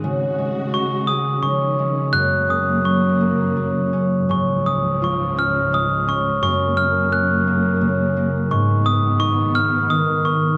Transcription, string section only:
\new Staff \with { instrumentName = "String section" } { \clef bass \time 3/4 \key fis \major \tempo 4 = 86 <cis gis fis'>2 <dis eis cis'>4 | <fis, cis ais>2. | <cis, gis, eis>2. | <fis, cis ais>2. |
<gis, dis b>2. | }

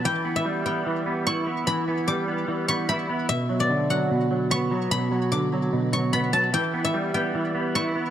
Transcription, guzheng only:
\new Staff \with { instrumentName = "Guzheng" } { \time 4/4 \key e \dorian \tempo 4 = 148 g''8. e''8. g''4. cis'''4 | b''4 d'''4. cis'''8 b''8 r8 | e''8. d''8. fis''4. cis'''4 | b''4 d'''4. cis'''8 b''8 a''8 |
g''8. e''8. g''4. cis'''4 | }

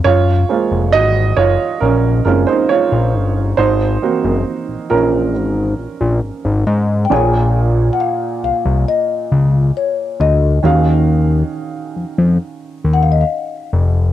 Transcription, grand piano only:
\new Staff \with { instrumentName = "Grand piano" } { \time 4/4 \key bes \minor \tempo 4 = 68 << { <f' des''>4 <ges' ees''>8 <f' des''>8 <des' bes'>8 <des' bes'>16 <ees' c''>16 <f' des''>4 | <ees' c''>4. <des' bes'>2 r8 | <bes, bes aes' des''>1 | <ees des' ges' aes' f''>1 | } \\ { r8 <aes bes f' c''>2 <aes bes c' f'>8 r4 | r8 <bes c' ges'>4. r2 | r1 | r1 | } >> }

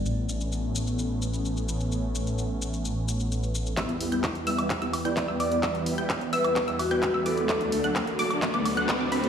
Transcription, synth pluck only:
\new Staff \with { instrumentName = "Synth pluck" } { \time 4/4 \key e \dorian \tempo 4 = 129 r1 | r1 | e'''8. g'''16 r8 e'''8 r16 e'''16 r16 g'''8 e'''16 d'''8 | e'''8. g'''16 r8 e'''8 r16 e'''16 r16 g'''8 e'''16 d'''8 |
d'''8. fis'''16 r8 d'''8 r16 d'''16 r16 fis'''8 d'''16 b''8 | }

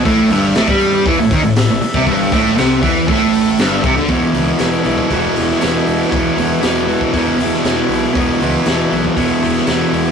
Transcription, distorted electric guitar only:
\new Staff \with { instrumentName = "Distorted electric guitar" } { \clef bass \time 4/4 \key e \major \tempo 4 = 119 a,8 g,8 a,16 g8. e16 a,16 dis16 a,8 a,16 r16 c16 | g,8 a,8 c8 e8 a,4 g,8 c16 d16 | <e, b, e>8 <b, e>8 <e, b, e>8 <b, e>8 <e, b, e>8 <b, e>8 <e, b, e>4 | <e, b, e>8 <b, e>8 <e, b, e>8 <b, e>8 <e, b, e>8 <b, e>8 <e, b, e>4 |
<e, b, e>8 <b, e>8 <e, b, e>8 <b, e>8 <e, b, e>8 <b, e>8 <e, b, e>4 | }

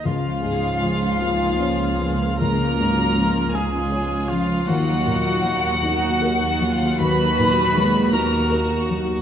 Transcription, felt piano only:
\new Staff \with { instrumentName = "Felt piano" } { \clef bass \time 6/8 \key des \mixolydian \tempo 4. = 53 des,8 aes,8 f8 f'8 des''8 f8 | des,8 aes,8 f8 f'8 des''8 f8 | ees,8 bes,8 ges8 ees'8 bes'8 ges8 | ees,8 bes,8 ges8 ees'8 bes'8 ges8 | }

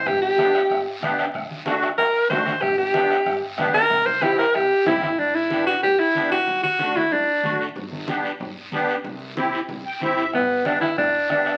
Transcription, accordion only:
\new Staff \with { instrumentName = "Accordion" } { \time 4/4 \key g \major \tempo 4 = 187 << { r1 | r1 | r1 | r1 |
r1 | r1 | r1 | r2 r8 g''8 e''4 |
r1 | } \\ { r4 <b d' g'>8 r4. <b d' g'>8 r8 | r4 <a d' fis'>8 r4. <a d' fis'>8 r8 | r4 <b d' g'>8 r4. <b d' g'>8 r8 | r4 <c' e' g'>8 r4. <c' e' g'>8 r8 |
r4 <b d' g'>8 r4. <b d' g'>8 r8 | r4 <a d' fis'>8 r4. <a d' fis'>8 r8 | r4 <b d' g'>8 r4. <b d' g'>8 r8 | r4 <c' e' g'>8 r4. <c' e' g'>8 r8 |
r4 <b d' g'>8 r4. <b d' g'>8 r8 | } >> }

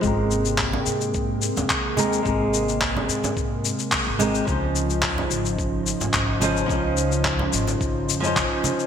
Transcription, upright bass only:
\new Staff \with { instrumentName = "Upright bass" } { \clef bass \time 4/4 \key aes \major \tempo 4 = 108 aes,,4~ aes,,16 r16 aes,4 r16 ees,16 ees,8. r16 | aes,,4~ aes,,16 r16 aes,4 r8. aes,,8 r16 | des,4~ des,16 r16 aes,,4 r16 aes,,16 aes,,8. r16 | des,4~ des,16 r16 aes,,8 aes,,8 f,8 aes,,16 r8. | }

